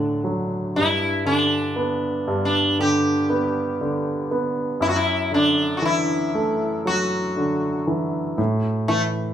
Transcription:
0.00 0.71 D2 soft
0.00 0.71 A2 soft
0.00 0.78 D3 soft
0.00 0.20 F#3 soft
0.00 0.22 D4 medium
0.24 0.74 F#3 soft
0.76 2.26 G2 soft
0.76 1.26 E4 medium
1.25 2.78 D3 soft
1.25 2.44 D4 medium
1.76 3.28 B3 soft
2.28 4.27 G2 soft
2.45 2.77 D4 medium
2.79 3.80 D3 soft
2.79 4.28 G4 medium
3.30 4.30 B3 soft
3.81 4.80 D3 soft
4.31 4.81 B3 soft
4.80 8.33 F#2 medium
4.80 4.88 E4 medium
4.89 4.96 F#4 medium
4.96 5.34 E4 medium
5.32 7.32 D3 soft
5.32 5.79 D4 medium
5.77 5.84 F#4 soft
5.82 7.83 E3 soft
5.82 6.87 E4 medium
6.35 8.34 A3 soft
6.85 8.34 F#3 soft
6.85 7.84 F#4 medium
7.37 8.35 D3 soft
7.87 8.37 E3 soft
8.38 9.34 A2 soft
8.88 9.34 E3 soft
8.88 9.02 A3 medium

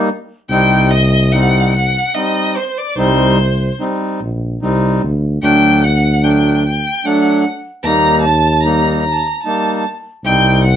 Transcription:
0.50 1.98 C2 loud
0.50 0.92 G3 medium
0.50 0.92 C4 medium
0.50 0.92 D#4 medium
0.50 0.93 G5 loud
0.91 1.33 D#5 loud
1.32 1.74 G3 medium
1.32 1.74 C4 medium
1.32 1.74 D#4 medium
1.32 1.73 F#5 loud
1.73 2.16 F#5 loud
2.14 2.57 G3 medium
2.14 2.56 C4 medium
2.14 2.57 D#4 medium
2.14 2.58 D#5 loud
2.57 2.79 C5 medium
2.78 2.98 D5 medium
2.96 3.70 C2 loud
2.96 3.38 G3 medium
2.96 3.38 C4 medium
2.96 3.38 D#4 loud
2.96 3.76 C5 medium
3.80 4.20 G3 medium
3.80 4.20 C4 medium
3.80 4.20 D#4 medium
4.20 4.57 A#1 medium
4.62 4.98 C2 medium
4.62 5.02 G3 medium
4.62 5.02 C4 medium
4.62 5.02 D#4 medium
5.03 5.39 D2 medium
5.42 6.88 D2 loud
5.42 5.83 F#3 medium
5.42 5.83 A3 medium
5.42 5.83 D4 medium
5.42 5.86 G5 loud
5.84 6.26 F#5 loud
6.23 6.64 F#3 medium
6.23 6.64 A3 medium
6.23 6.64 D4 medium
6.23 6.64 G5 medium
6.66 7.07 G5 medium
7.05 7.45 F#3 medium
7.05 7.45 A3 medium
7.05 7.44 D4 medium
7.05 7.45 F#5 medium
7.83 9.28 D#2 loud
7.83 8.25 G3 medium
7.83 8.25 A#3 medium
7.83 8.25 D#4 medium
7.83 8.21 A#5 loud
8.22 8.62 A5 loud
8.61 9.00 A#5 medium
8.65 9.05 G3 medium
8.65 9.05 A#3 medium
8.65 9.05 D#4 medium
9.01 9.13 A#5 medium
9.11 9.16 A5 medium
9.11 9.42 A#5 medium
9.43 9.85 G3 medium
9.43 9.85 A#3 medium
9.43 9.85 D#4 medium
9.43 9.81 A5 medium
10.24 10.76 C2 loud
10.24 10.65 G3 medium
10.24 10.65 C4 medium
10.24 10.65 D#4 medium
10.24 10.62 G5 loud
10.64 10.76 F#5 loud

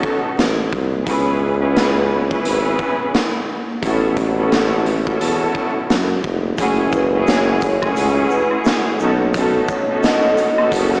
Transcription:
0.00 0.64 B3 loud
0.00 0.64 C#4 loud
0.00 0.65 D#4 medium
0.00 0.65 F#4 medium
0.00 0.65 A4 loud
0.00 kick medium
0.38 0.69 A1 medium
0.38 snare loud
0.38 snare medium
0.38 closed hi-hat medium
0.73 1.03 C2 medium
0.73 kick medium
1.06 2.41 C#2 loud
1.06 1.56 B3 medium
1.06 1.57 C#4 medium
1.06 1.57 E4 medium
1.06 1.57 G#4 medium
1.06 1.57 B4 loud
1.06 kick loud
1.06 closed hi-hat medium
1.60 2.23 B3 medium
1.60 2.23 C#4 medium
1.60 2.24 E4 medium
1.60 2.24 G#4 medium
1.60 2.24 B4 loud
1.76 snare loud
1.76 closed hi-hat medium
2.29 3.55 B3 loud
2.29 3.55 C#4 medium
2.29 3.55 E4 medium
2.29 3.56 G#4 medium
2.29 3.56 B4 loud
2.29 kick medium
2.45 2.76 G#1 loud
2.45 closed hi-hat loud
2.79 kick medium
3.14 snare loud
3.14 snare medium
3.14 closed hi-hat medium
3.82 5.17 A1 loud
3.82 4.32 B3 medium
3.82 4.33 C#4 medium
3.82 4.33 E4 medium
3.82 4.33 F#4 medium
3.82 4.34 A4 loud
3.82 kick loud
3.82 closed hi-hat medium
4.17 kick medium
4.17 closed hi-hat medium
4.36 4.99 B3 loud
4.36 4.99 C#4 medium
4.36 5.00 E4 medium
4.36 5.00 F#4 medium
4.36 5.00 A4 loud
4.52 snare loud
4.52 snare medium
4.52 closed hi-hat medium
4.86 closed hi-hat medium
5.04 6.15 B3 medium
5.04 6.15 C#4 medium
5.04 6.15 E4 medium
5.04 6.16 F#4 medium
5.04 6.16 A4 loud
5.04 kick medium
5.21 5.51 E2 medium
5.21 closed hi-hat medium
5.55 kick medium
5.90 6.20 F#2 medium
5.90 snare loud
5.90 snare medium
5.90 closed hi-hat medium
6.24 6.55 F1 medium
6.24 kick medium
6.56 7.92 F#1 loud
6.56 8.96 E3 medium
6.56 11.00 A3 medium
6.56 7.08 A3 loud
6.56 7.08 C#4 medium
6.56 7.08 E4 medium
6.56 7.09 F#4 medium
6.56 8.96 G#4 medium
6.56 7.09 G#4 loud
6.56 kick loud
6.56 closed hi-hat medium
6.56 shaker medium
6.92 7.24 B4 medium
6.92 kick loud
6.92 shaker medium
7.13 7.76 A3 loud
7.13 7.76 C#4 medium
7.13 7.76 E4 medium
7.13 7.76 F#4 medium
7.13 7.77 G#4 loud
7.27 7.59 C#5 medium
7.27 snare loud
7.27 closed hi-hat medium
7.27 shaker medium
7.61 7.93 C#5 medium
7.61 kick medium
7.61 closed hi-hat medium
7.61 shaker medium
7.82 9.00 A3 loud
7.82 8.99 C#4 loud
7.82 9.00 E4 loud
7.82 9.01 F#4 medium
7.82 9.01 G#4 loud
7.82 kick medium
7.82 high woodblock medium
7.96 8.27 C#2 loud
7.96 closed hi-hat loud
7.96 shaker medium
8.30 8.49 B4 medium
8.30 shaker soft
8.51 high woodblock medium
8.65 snare loud
8.65 snare medium
8.65 closed hi-hat medium
8.65 shaker medium
8.99 9.61 B1 loud
8.99 9.23 B3 medium
8.99 11.00 C#4 medium
8.99 9.23 C#4 medium
8.99 11.00 D#4 medium
8.99 9.23 D#4 medium
8.99 9.23 F#4 medium
8.99 9.24 A4 loud
8.99 shaker soft
8.99 shaker medium
9.34 9.85 B3 loud
9.34 9.85 C#4 medium
9.34 9.85 D#4 medium
9.34 9.85 F#4 medium
9.34 9.86 A4 loud
9.34 kick loud
9.34 closed hi-hat medium
9.34 shaker medium
9.68 10.00 C#5 medium
9.68 kick loud
9.68 shaker medium
9.89 10.52 B3 medium
9.89 10.52 C#4 medium
9.89 10.52 D#4 medium
9.89 10.52 F#4 medium
9.89 10.53 A4 loud
10.02 10.34 D#5 medium
10.02 snare loud
10.02 closed hi-hat medium
10.02 shaker medium
10.37 closed hi-hat medium
10.37 shaker medium
10.58 11.00 B3 loud
10.58 11.00 C#4 loud
10.58 11.00 D#4 loud
10.58 11.00 F#4 loud
10.58 11.00 A4 loud
10.58 high woodblock medium
10.72 11.00 F#1 loud
10.72 kick medium
10.72 closed hi-hat loud
10.72 shaker medium
10.94 snare soft

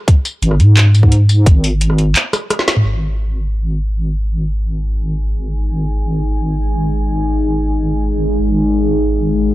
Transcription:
0.08 kick loud
0.08 closed hi-hat medium
0.25 closed hi-hat soft
0.25 tambourine soft
0.42 0.61 G#1 medium
0.42 closed hi-hat medium
0.51 cross-stick soft
0.60 1.45 G#2 medium
0.60 closed hi-hat soft
0.77 cross-stick soft
0.77 clap loud
0.77 closed hi-hat medium
0.95 closed hi-hat soft
0.95 tambourine soft
1.03 kick medium
1.12 closed hi-hat medium
1.29 closed hi-hat soft
1.29 tambourine soft
1.46 2.15 G#1 medium
1.46 kick loud
1.46 closed hi-hat medium
1.64 closed hi-hat soft
1.64 tambourine soft
1.81 closed hi-hat medium
1.90 cross-stick soft
1.98 closed hi-hat soft
2.16 clap loud
2.16 closed hi-hat medium
2.33 cross-stick medium
2.33 closed hi-hat soft
2.33 tambourine soft
2.50 cross-stick medium
2.50 closed hi-hat medium
2.59 snare medium
2.68 snare medium
2.68 closed hi-hat soft
2.68 tambourine soft
2.77 mid tom medium
2.85 8.38 G#1 medium
2.85 9.54 G#3 medium
2.85 9.54 D#4 medium
2.85 9.54 G#4 medium
2.85 8.36 G#5 medium
8.40 9.54 G#1 medium
8.40 9.54 F#5 medium

